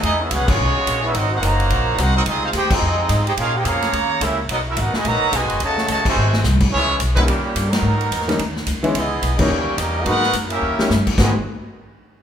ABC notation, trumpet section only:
X:1
M:4/4
L:1/8
Q:"Swing" 1/4=215
K:C#dor
V:1 name="Trumpet section"
[B,EGd] [CGBe] [CGBf] [B,FGc]4 [CGBe] | [^B,FAd] [DA^Bf] [FBda]4 [DABf] [B,FAd] | [^B,^EGd] [DG^B^e] [DGB=g] [B,E^Gd]4 [DGB=g] | [CGA^e] [DG^B=g] [^Gcea]4 [C=GA=e] z |
[B,FAd] [CFAe] [DABf] [FBdg] [FBda]2 [FBdg]2 | [Fcd=a]2 [Fcda] [F^Beg]3 z2 | [K:G#m] [B,EGc]2 z [G,DEB] [A,C=G]3 [F,B,DA]- | [F,B,DA]4- [F,B,DA] z3 |
[B,EGd]3 [A,E=Gc]3 [CGAd]2 | [DABf]2 z [C=GAe]4 z | [FBdg] z6 z |]